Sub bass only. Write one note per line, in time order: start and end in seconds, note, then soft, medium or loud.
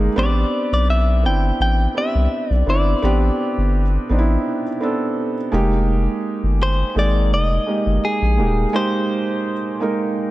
0.17 0.45 A1 loud
0.72 1.26 B1 medium
1.24 1.52 G1 medium
1.60 1.87 A1 loud
2.15 2.28 C2 medium
2.51 2.63 B1 loud
2.67 2.95 G1 medium
3.03 3.31 A1 loud
3.58 3.98 G1 medium
4.10 4.38 A1 loud
5.53 6.08 F1 loud
6.43 6.84 G1 loud
6.96 7.33 G#1 medium
7.31 7.59 F1 medium
7.86 7.99 G1 medium
8.22 8.40 A#1 medium
8.39 8.66 D#1 medium